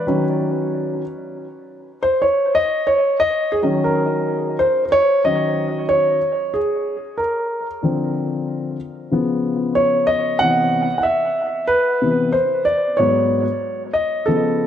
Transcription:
Already playing: B4
0.07 D#3 F#3 C#4
2.03 C5
2.22 C#5
2.55 D#5
2.87 C#5
3.20 D#5
3.52 G#4
3.62 D#3 F#3 C#4
3.84 A#4
4.59 C5
4.85 C5
4.92 C#5
5.24 D#3 F#3 C#4 D#5
5.89 C#5
6.54 G#4
7.18 A#4
7.83 D3 F3 C4
9.11 C#3 F3 B3
9.75 C#5
10.07 D#5
10.39 C3 E3 B3 F#5
10.98 F#5
11.03 E5
11.67 B4
12.02 C3 E3 B3
12.32 C5
12.65 D5
12.97 G#2 F#3 B3 C#5
13.93 D#5
14.26 C#3 F3 B3 A4

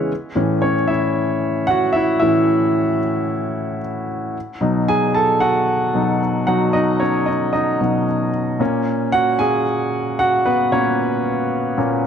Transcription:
Already playing: C#3 E3 G#3 B3 C#4 B4 C#5
0.35 A2 E3 C#4
0.62 C#4 C#5
0.88 E4 E5
1.67 F#4 F#5
1.93 E4 E5
2.20 A2 E3 C#4 E4 E5
4.61 B2 F#3 D#4
4.88 G#4 G#5
5.14 A4 A5
5.40 F#4 F#5
5.94 B2 F#3 D#4
6.47 B2 F#3 D#4 F#4 F#5
6.73 D#4 D#5
7.00 C#4 C#5
7.26 D#4 D#5
7.53 D#4 D#5
7.81 B2 F#3 D#4
8.60 A#2 A#3 C#4
9.12 F#4 F#5
9.39 A#2 A#3 C#4 G#4 G#5
10.19 F#4 F#5
10.46 B3 B4
10.72 A#2 A#3 C#4 C#5
11.78 A#2 A#3 C#4

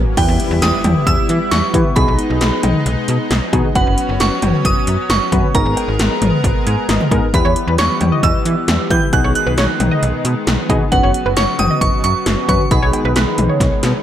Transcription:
Already playing: F#3 A#3 C#4, swell
0.17 E2 G3 B3 E4 G4 B4 G5, kick, closed hi-hat, crash, impact
0.28 E2
0.40 closed hi-hat
0.51 E2
0.62 E2 D#6, snare, closed hi-hat
0.84 E2, closed hi-hat, mid tom, cowbell
1.07 E2 E6, kick, closed hi-hat
1.29 E3, closed hi-hat
1.51 E2 C#6, snare, closed hi-hat
1.74 E3 B3 E4 G4 B4, kick, closed hi-hat, mid tom
1.96 B1 G#3 B3 D#4 F#4 G#4 B5, kick, closed hi-hat
2.08 B1
2.19 closed hi-hat
2.30 B1
2.41 B1, snare, closed hi-hat
2.63 B1, closed hi-hat, mid tom, cowbell
2.86 B1, closed hi-hat
3.08 B2, closed hi-hat
3.31 B1, snare, closed hi-hat
3.53 B2 B3 D#4 F#4 G#4, kick, closed hi-hat, mid tom
3.75 F#1 F#3 B3 C#4 F#4 B4 F#5, kick, closed hi-hat
3.87 F#1
3.98 closed hi-hat
4.09 F#1
4.20 F#1 C#6, snare, closed hi-hat
4.42 F#1, closed hi-hat, mid tom, cowbell
4.65 F#1 D#6, kick, closed hi-hat
4.87 F#2, closed hi-hat
5.10 F#1 C#6, snare, closed hi-hat
5.32 F#2 B3 C#4 F#4 B4, kick, closed hi-hat, mid tom
5.55 G#1 G#3 B3 D#4 G#4 A#4 A#5, kick, closed hi-hat
5.66 G#1
5.77 closed hi-hat, cowbell
5.88 G#1
5.99 G#1, snare, closed hi-hat
6.22 G#1, closed hi-hat, mid tom
6.44 G#1, kick, closed hi-hat
6.67 G#2 G#5, closed hi-hat
6.89 G#1 D#5, snare, closed hi-hat
7.01 mid tom
7.11 G#2 B3 D#4 G#4 A#4, kick, closed hi-hat
7.34 E2 E3 G3 B3 E4 G4 B4 B5, kick, closed hi-hat
7.45 E2 C#5
7.56 closed hi-hat
7.67 E2 B4
7.78 E2 C#5 C#6, snare, closed hi-hat
8.01 E2, closed hi-hat, mid tom, cowbell
8.12 D#5
8.23 E2 E6, kick, closed hi-hat
8.45 E3, closed hi-hat
8.68 E2, snare, closed hi-hat
8.90 E3 B3 E4 G4 B4 G6, kick, closed hi-hat, mid tom
9.13 B1 D#3 G#3 B3 D#4 F#4 G#4 F#6, kick, closed hi-hat
9.24 B1 C#5
9.35 F#6, closed hi-hat
9.47 B1 B4
9.58 B1 C#5, snare, closed hi-hat
9.80 B1, closed hi-hat, mid tom, cowbell
9.91 D#5
10.03 B1, closed hi-hat
10.25 B2, closed hi-hat
10.47 B1, snare, closed hi-hat
10.69 B2 B3 D#4 F#4 G#4 D#5, kick, closed hi-hat, mid tom
10.92 F#1 C#3 F#3 B3 C#4 F#4 B4 F#5, kick, closed hi-hat
11.03 F#1 C#5
11.14 closed hi-hat
11.26 F#1 B4
11.37 F#1 C#5 C#6, snare, closed hi-hat
11.59 F#1 D#6, closed hi-hat, mid tom, cowbell
11.71 D#5
11.81 F#1 C#6, kick, closed hi-hat
12.04 F#2 C#6, closed hi-hat
12.26 F#1, snare, closed hi-hat
12.48 F#2 B3 C#4 F#4 B4 C#6, kick, closed hi-hat, mid tom
12.71 B1 D#3 G#3 B3 D#4 F#4 G#4 B5, kick, closed hi-hat
12.82 B1 C#5
12.93 closed hi-hat, cowbell
13.05 B1 B4
13.16 B1 B4, snare, closed hi-hat
13.38 B1, closed hi-hat, mid tom
13.49 C#5
13.60 B1, kick, snare, closed hi-hat
13.83 B2, snare, closed hi-hat

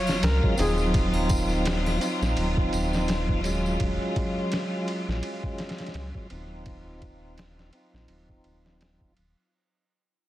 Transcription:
Already playing: F#3 F4 C#5, sub drop
0.07 snare, tambourine, triangle
0.23 C#2 A#4, snare, ride, tambourine
0.43 F#3 G#3 C#4 F4, kick
0.57 D#1 C4 D#4 G#4, ride, tambourine
0.61 F4
0.78 tambourine
0.94 kick, ride, tambourine
1.14 triangle
1.29 kick, ride, tambourine
1.49 tambourine
1.65 snare, ride, tambourine
1.86 snare, triangle
2.00 C4 D#4 F4, ride, tambourine
2.22 A#1, snare, tambourine
2.37 D#1, ride, tambourine
2.57 kick
2.73 D#1, ride, tambourine
2.93 snare, tambourine
3.08 snare, ride, tambourine
3.29 kick
3.43 F#3 G#3 C#4 F4, ride, tambourine
3.66 tambourine
3.80 D#1, kick, ride
4.16 kick, ride
4.52 snare, ride
4.88 ride
5.08 A#1, snare
5.23 ride
5.43 kick
5.58 snare, ride
5.69 snare, ride
5.78 snare, ride
5.86 snare, ride
5.94 C#2, snare, ride
6.15 F#3 G#3 C#4 F4, kick
6.30 D#1 C4 D#4, ride
6.34 F4
6.66 kick, ride
7.02 kick, ride
7.38 snare, ride
7.59 snare
7.73 C4 D#4, ride
7.77 F4
7.93 A#1, snare
8.08 D#1, ride
8.29 kick
8.44 D#1, ride
8.66 snare
8.81 D#1, snare, ride
9.01 D#1, kick
9.17 D#1, ride

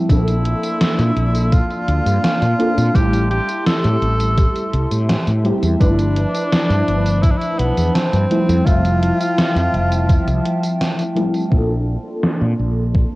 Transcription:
Already playing: F3 G3 A3 C4 E4 A5
0.09 A#1 F3 A#3 C4 D4 E4 A4 D5 C6, kick, closed hi-hat, tambourine
0.28 closed hi-hat, tambourine
0.45 closed hi-hat
0.63 closed hi-hat, tambourine
0.81 snare, closed hi-hat, tambourine
0.99 A#2, closed hi-hat, tambourine
1.16 A#1, closed hi-hat
1.35 closed hi-hat, tambourine
1.52 F4, kick, closed hi-hat, tambourine
1.70 closed hi-hat, tambourine
1.88 D2, closed hi-hat
2.06 G2, closed hi-hat, tambourine
2.24 snare, closed hi-hat, tambourine
2.42 A#2, closed hi-hat, tambourine
2.59 A#3 C4 D4 F4 A4, closed hi-hat
2.78 A#2, closed hi-hat, tambourine
2.93 A1 G3 A3 C4 E4 G4 E5, kick, closed hi-hat, tambourine
3.13 closed hi-hat, tambourine
3.30 G4, closed hi-hat
3.49 closed hi-hat, tambourine
3.66 A4, snare, closed hi-hat, tambourine
3.84 A2, closed hi-hat, tambourine
4.02 A1, closed hi-hat
4.20 closed hi-hat, tambourine
4.38 kick, closed hi-hat, tambourine
4.56 closed hi-hat, tambourine
4.73 C2, closed hi-hat
4.91 A2, closed hi-hat, tambourine
5.09 snare, closed hi-hat, tambourine
5.27 A2, closed hi-hat, tambourine
5.44 G3 A3 C4 E4 G4, closed hi-hat
5.63 E2, closed hi-hat, tambourine
5.79 G1 F3 A3 D4 E4 B4 A5 B5, kick, closed hi-hat, tambourine
5.99 closed hi-hat, tambourine
6.16 closed hi-hat
6.35 closed hi-hat, tambourine
6.52 snare, closed hi-hat, tambourine
6.70 G2, closed hi-hat, tambourine
6.88 G1, closed hi-hat
7.06 closed hi-hat, tambourine
7.22 E4, kick, closed hi-hat, tambourine
7.30 D4
7.37 E4
7.42 closed hi-hat, tambourine
7.59 B1 B3, closed hi-hat
7.77 E2, closed hi-hat, tambourine
7.95 C4, snare, closed hi-hat, tambourine
8.13 G2, closed hi-hat, tambourine
8.30 F3 G3 A3 C4 E4 E5 G5 A5, closed hi-hat
8.49 F2, closed hi-hat, tambourine
8.65 F1 F3 G3 A3 C4 F4 E5, kick, closed hi-hat, tambourine
8.85 closed hi-hat, tambourine
9.03 closed hi-hat
9.21 closed hi-hat, tambourine
9.38 snare, closed hi-hat, tambourine
9.56 F2, closed hi-hat, tambourine
9.74 F1, closed hi-hat
9.92 closed hi-hat, tambourine
10.09 kick, closed hi-hat, tambourine
10.27 C2, closed hi-hat, tambourine
10.45 closed hi-hat
10.63 closed hi-hat, tambourine
10.81 snare, closed hi-hat, tambourine
10.99 closed hi-hat, tambourine
11.15 F3 G3 A3 C4 E4, closed hi-hat
11.34 closed hi-hat, tambourine
11.50 A#1 A#3 C4 D4 F4 A4 D5 A5 C6, kick
12.23 snare
12.41 A#2
12.59 A#1
12.95 kick

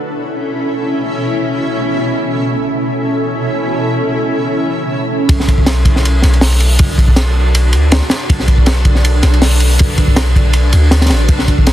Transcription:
Already playing: B2 C#4 E4 A4 C#5 E5
2.30 B2 C#4 E4 A4 C#5 E5
5.29 B1, kick, ride
5.40 snare
5.48 kick, ride
5.58 kick
5.66 snare, ride
5.85 kick, ride
5.96 snare
6.05 ride
6.22 B1, snare, ride
6.33 ride
6.41 snare, open hi-hat
6.52 ride
6.60 ride
6.79 B1, kick, ride
6.98 kick, ride
7.08 kick
7.16 snare, ride
7.55 ride
7.73 D2, ride
7.92 C#2, snare, ride
8.02 snare
8.10 snare, ride
8.29 B1, kick, ride
8.39 snare
8.48 kick, ride
8.58 kick
8.66 snare, ride
8.85 kick, ride
8.95 snare
9.05 ride
9.23 B1, snare, ride
9.34 ride
9.42 snare, open hi-hat
9.51 ride
9.60 ride
9.79 B1, kick, ride
9.98 kick, ride
10.07 kick
10.16 snare, ride
10.36 kick, ride
10.53 ride
10.73 D2, ride
10.91 snare, ride
11.02 snare, ride
11.06 snare, ride
11.10 A1, snare, ride
11.28 B1, kick, ride
11.39 snare
11.48 kick, ride
11.58 kick
11.67 snare, ride

